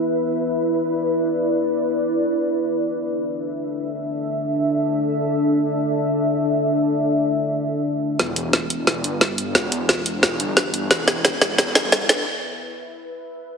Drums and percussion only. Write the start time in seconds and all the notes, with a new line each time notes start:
8.19 snare, closed hi-hat
8.36 closed hi-hat
8.53 snare, closed hi-hat
8.70 closed hi-hat
8.87 snare, closed hi-hat
9.04 closed hi-hat
9.21 snare, closed hi-hat
9.38 closed hi-hat
9.55 snare, closed hi-hat
9.72 closed hi-hat
9.89 snare, closed hi-hat
10.06 closed hi-hat
10.23 snare, closed hi-hat
10.40 closed hi-hat
10.57 snare, closed hi-hat
10.74 closed hi-hat
10.91 snare, closed hi-hat
11.08 snare, closed hi-hat, tambourine
11.25 snare, closed hi-hat
11.42 snare, closed hi-hat, tambourine
11.58 snare, closed hi-hat
11.75 snare, closed hi-hat, tambourine
11.92 snare, closed hi-hat
12.09 snare, closed hi-hat, tambourine